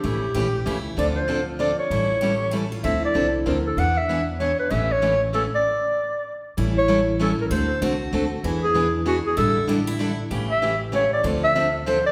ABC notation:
X:1
M:3/4
L:1/8
Q:"Swing" 1/4=193
K:Aphr
V:1 name="Clarinet"
G4- G z | d c2 z d ^c- | ^c4- c z | e d2 z B A |
^f e2 z ^c =B | e ^c2 z A d- | d4- d z | z ^c2 z A B |
c2 z4 | z ^G2 z ^F G | A2 z4 | z e2 z ^c d |
z e2 z c d |]
V:2 name="Steel-string acoustic guitar"
E2 G2 E2 | F6 | E2 G2 A F | E6 |
D6 | ^C6 | z6 | E6 |
A2 ^F4 | E6 | E2 G E2 z | G6 |
F6 |]
V:3 name="Steel-string acoustic guitar"
[^C,E,A,^CG] z [C,E,A,CG] z [C,E,A,CG] z | [D,F,CDA] z [D,F,CDA] z [D,F,CDA] z | [E,G,^CEA] z [E,G,CEA] z [E,G,CEA] z | [D,F,CDA] z [D,F,CDA] z [D,F,CDA] z |
[E,=B,D^G] z [E,B,DG] z [E,B,DG] z | [^C,E,A,^CG] z [C,E,A,CG] z [C,E,A,CG] z | z6 | [E,G,^CEA] z [E,G,CEA] z [E,G,CEA] z |
[D,A,C^FA] z [D,A,CFA] z [D,A,CFA] z | [E,=B,D^G] z [E,B,DG] z [E,B,DG] z | [D,G,DEA] z [D,G,DEA] z [D,G,DEA] z | [^C,E,A,^CG] z [C,E,A,CG] z [C,E,A,CG] z |
[D,F,CDA] z [D,F,CDA] z [D,F,CDA] z |]
V:4 name="Upright bass" clef=bass
A,,,2 B,,,2 ^C,,2 | D,,6 | A,,,6 | D,,2 C,,2 D,,2 |
E,,6 | A,,,6 | z6 | A,,,6 |
D,,2 C,,2 D,,2 | E,,6 | A,,,6 | A,,,6 |
D,,6 |]